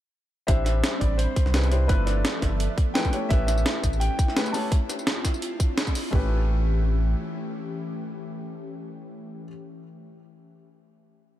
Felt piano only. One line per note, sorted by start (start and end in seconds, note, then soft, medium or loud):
0.47 1.51 C4 medium
0.47 1.52 D4 medium
0.47 1.52 E4 medium
0.47 1.52 G4 medium
0.47 1.53 C5 loud
1.53 1.65 C4 medium
1.53 1.65 D4 medium
1.53 1.65 E4 medium
1.53 1.65 G4 medium
1.53 1.65 B4 medium
1.71 1.87 C4 medium
1.71 1.87 D4 medium
1.71 1.87 E4 medium
1.71 1.88 G4 medium
1.71 1.88 C5 medium
1.88 2.93 A3 medium
1.88 2.93 D4 medium
1.88 2.93 E4 medium
1.88 2.94 F4 medium
1.88 2.94 B4 loud
2.95 3.06 A3 medium
2.95 3.06 D4 medium
2.95 3.06 E4 medium
2.95 3.06 F4 medium
2.95 3.06 B4 medium
3.12 3.28 A3 medium
3.12 3.28 C#4 medium
3.12 3.29 E4 medium
3.12 3.29 G4 medium
3.12 3.29 C#5 medium
3.29 4.34 A3 medium
3.29 4.34 C#4 medium
3.29 4.35 E4 medium
3.29 4.35 G4 medium
3.29 4.35 B4 loud
4.36 4.47 A3 medium
4.36 4.47 C#4 medium
4.36 4.47 E4 medium
4.36 4.47 G4 medium
4.36 4.48 B4 medium
4.53 4.69 A3 medium
4.53 4.70 C#4 medium
4.53 4.70 E4 medium
4.53 4.70 G4 medium
4.53 4.70 C#5 medium
6.11 9.44 A3 medium
6.11 9.45 C#4 medium
6.11 9.46 E4 medium
6.11 9.47 G4 medium
6.15 9.48 B4 medium